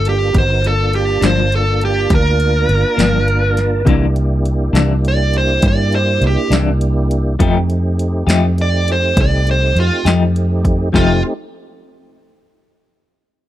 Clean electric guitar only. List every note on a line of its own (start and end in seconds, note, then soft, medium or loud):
1.21 1.40 G2 medium
1.21 1.40 F3 medium
1.21 1.40 A#3 medium
1.21 1.39 D4 medium
2.97 3.17 G2 medium
2.97 3.16 F3 medium
2.97 3.16 A#3 medium
2.97 3.15 D4 medium
3.85 4.04 C3 medium
3.85 4.04 E3 medium
3.85 4.05 A#3 medium
3.85 4.05 D4 medium
4.73 4.93 C3 medium
4.73 4.92 E3 medium
4.73 4.92 A#3 medium
4.73 4.92 D4 medium
6.51 6.70 C3 medium
6.51 6.70 E3 medium
6.51 6.70 A#3 medium
6.51 6.69 D4 medium
7.39 7.57 F3 medium
7.39 7.57 A3 medium
7.39 7.58 D#4 medium
7.39 7.58 G4 loud
8.27 8.46 F3 medium
8.27 8.46 A3 medium
8.27 8.46 D#4 medium
8.27 8.45 G4 medium
10.05 10.24 F3 medium
10.05 10.24 A3 medium
10.05 10.23 D#4 medium
10.05 10.23 G4 medium
10.93 11.17 F3 medium
10.93 11.17 A3 medium
10.93 11.17 D#4 medium
10.93 11.18 G4 medium